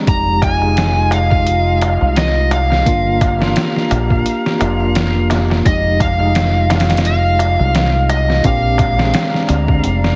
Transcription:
0.07 fingered electric bass F1, tine electric piano G#3 D#4 G4, analog synth pad F4 D#5 F5, electric slide guitar A#5, kick, closed hi-hat, darbuka tek
0.42 electric slide guitar G#5, kick, closed hi-hat, darbuka tek
0.60 tine electric piano G#3 D#4 G#4, darbuka tek
0.76 snare, closed hi-hat, darbuka tek
1.11 electric slide guitar F5, closed hi-hat, darbuka tek
1.30 kick, darbuka tek
1.46 closed hi-hat, darbuka tek
1.81 closed hi-hat, darbuka tek
2.01 fingered electric bass C2, darbuka tek
2.16 electric slide guitar D#5, snare, closed hi-hat, darbuka tek
2.51 electric slide guitar F5, closed hi-hat, darbuka tek
2.70 snare, darbuka tek
2.86 fingered electric bass G1, tine electric piano A#3 D4 F4, analog synth pad G4 F5 A#5, kick, closed hi-hat, darbuka tek
3.21 kick, closed hi-hat, darbuka tek
3.39 tine electric piano A#3 D4, snare, darbuka tek
3.43 tine electric piano F4
3.56 snare, closed hi-hat, darbuka tek
3.76 snare
3.91 fingered electric bass A#1, closed hi-hat, darbuka tek
4.10 kick, darbuka tek
4.26 closed hi-hat, darbuka tek
4.46 snare
4.59 fingered electric bass F1, tine electric piano A#3 D4 F4, closed hi-hat, darbuka tek
4.80 darbuka tek
4.95 snare, closed hi-hat, darbuka tek
5.30 snare, closed hi-hat, darbuka tek
5.50 snare, darbuka tek
5.65 fingered electric bass F1, tine electric piano G#3 D#4 G4, analog synth pad F4 D#5 F5, electric slide guitar D#5, kick, closed hi-hat, darbuka tek
6.00 electric slide guitar F5, kick, closed hi-hat, darbuka tek
6.19 tine electric piano G#3 D#4, darbuka tek
6.23 tine electric piano G#4
6.35 snare, closed hi-hat, darbuka tek
6.70 snare, closed hi-hat, darbuka tek
6.80 snare, closed hi-hat
6.90 snare, closed hi-hat, darbuka tek
6.97 snare, closed hi-hat
7.05 electric slide guitar F5, closed hi-hat, darbuka tek
7.39 closed hi-hat, darbuka tek
7.59 fingered electric bass C2, darbuka tek
7.75 snare, closed hi-hat, darbuka tek
8.09 electric slide guitar D#5, closed hi-hat, darbuka tek
8.28 snare, darbuka tek
8.44 fingered electric bass A#1, analog synth pad G#3 D5 A#5, tine electric piano C4 D4 G4, electric slide guitar F5, kick, closed hi-hat, darbuka tek
8.78 kick, closed hi-hat, darbuka tek
8.98 tine electric piano C4 D4, snare, darbuka tek
9.02 tine electric piano G#4
9.14 snare, closed hi-hat, darbuka tek
9.34 snare
9.49 fingered electric bass D2, closed hi-hat, darbuka tek
9.68 kick, darbuka tek
9.84 fingered electric bass F1, closed hi-hat, darbuka tek
10.04 snare

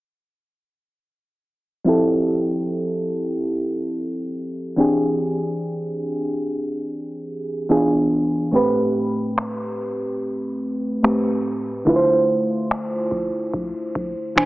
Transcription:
1.84 fm electric piano F3 C4 E4 G4
1.89 fm electric piano A4
4.76 fm electric piano E3 C4 D4 G4
4.80 fm electric piano G#4
7.69 fm electric piano E3 B3 D4 F4 G#4
8.51 fm electric piano A2 A3 C4 G4
8.56 fm electric piano B4
9.38 finger snap
11.03 fm electric piano A2 A3 C4 G4 B4, finger snap
11.85 fm electric piano D3 A3 E4 F4, kick
11.89 fm electric piano B4
11.96 fm electric piano C5
12.71 finger snap
13.11 kick
13.53 kick
13.95 kick
14.36 fm electric piano B2 E3 D4 C5 G#5, finger snap

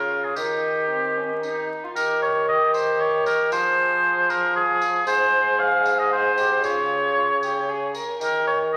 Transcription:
Already playing: bassoon C#3, violin F4, oboe A#4
0.24 oboe G#4
0.36 bassoon D#3, violin D#4, oboe G4, tambourine
0.90 violin C4
1.17 violin C#4
1.43 violin D#4, tambourine
1.84 violin F4
1.96 bassoon D#3, violin G4, oboe A#4, tambourine
2.22 oboe C#5
2.49 violin G4, oboe D#5
2.74 oboe C5, tambourine
3.00 oboe C#5
3.26 oboe A#4, tambourine
3.52 bassoon F3, violin G#4, oboe C5, tambourine
4.30 oboe A#4, tambourine
4.55 violin G#4, oboe G#4
4.82 tambourine
5.06 bassoon G#2, violin G#4, oboe C5, tambourine
5.60 oboe F5
5.86 tambourine
5.99 oboe D#5
6.11 violin G#4, oboe C5
6.38 violin G4, tambourine
6.63 bassoon C#3, violin F4, oboe C#5, tambourine
7.16 violin F4
7.43 violin G4, tambourine
7.69 violin G#4
7.95 violin A#4, tambourine
8.20 bassoon D#3, violin G4, oboe A#4, tambourine
8.47 oboe C#5
8.73 oboe D#5

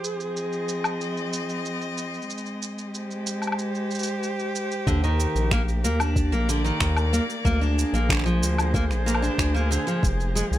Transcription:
Already playing: string quartet F3 G#4 C5
0.04 shaker
0.12 string quartet C4
0.20 shaker
0.35 string quartet D#5, shaker
0.53 shaker
0.69 shaker
0.84 low woodblock, shaker
1.01 shaker
1.17 shaker
1.33 shaker
1.49 shaker
1.65 shaker
1.81 shaker
1.98 shaker
2.14 shaker
2.22 shaker
2.30 string quartet G#3, shaker
2.38 shaker
2.46 shaker
2.62 shaker
2.78 shaker
2.87 string quartet G4
2.94 string quartet C5, shaker
3.11 shaker
3.27 shaker
3.42 low woodblock, shaker
3.47 low woodblock
3.52 low woodblock
3.59 shaker
3.75 shaker
3.91 shaker
3.95 shaker
3.99 shaker
4.03 shaker
4.23 shaker
4.39 shaker
4.55 shaker
4.72 shaker
4.87 analog synth bass D#2, steel-string acoustic guitar D3, kick, shaker
4.97 string quartet A#3
5.04 steel-string acoustic guitar D#3, shaker
5.20 shaker
5.35 analog synth bass A#1, shaker
5.51 steel-string acoustic guitar A#3, finger snap, kick, shaker
5.69 shaker
5.84 analog synth bass D#2, steel-string acoustic guitar A#3, shaker
6.00 steel-string acoustic guitar D4, string quartet D5, low woodblock, shaker
6.16 kick, shaker
6.32 analog synth bass A#1, steel-string acoustic guitar A#3, shaker
6.49 steel-string acoustic guitar D3, shaker
6.64 steel-string acoustic guitar D#3, shaker
6.80 analog synth bass D#2, finger snap, kick, shaker
6.97 low woodblock, shaker
7.13 steel-string acoustic guitar A#3, shaker
7.30 shaker
7.45 analog synth bass D2, string quartet D3, steel-string acoustic guitar A#3, kick, shaker
7.61 steel-string acoustic guitar D4, string quartet G#4, shaker
7.79 shaker
7.93 analog synth bass A#1, steel-string acoustic guitar A#3, string quartet C5, shaker
8.09 steel-string acoustic guitar D3, finger snap, kick, shaker
8.12 finger snap
8.15 finger snap
8.17 finger snap
8.19 finger snap
8.21 finger snap
8.24 steel-string acoustic guitar F3, finger snap, shaker
8.42 analog synth bass D2, shaker
8.58 low woodblock, shaker
8.74 steel-string acoustic guitar A#3, kick, shaker
8.90 analog synth bass A#1, finger snap, shaker
9.06 steel-string acoustic guitar A#3, shaker
9.15 low woodblock
9.22 steel-string acoustic guitar D4, shaker
9.38 analog synth bass D2, finger snap, kick, shaker
9.54 steel-string acoustic guitar A#3, shaker
9.71 steel-string acoustic guitar D3, shaker
9.87 steel-string acoustic guitar F3, shaker
10.03 analog synth bass F1, string quartet F3, kick, shaker
10.21 shaker
10.35 steel-string acoustic guitar G#3, shaker
10.51 analog synth bass C2, string quartet C4, shaker

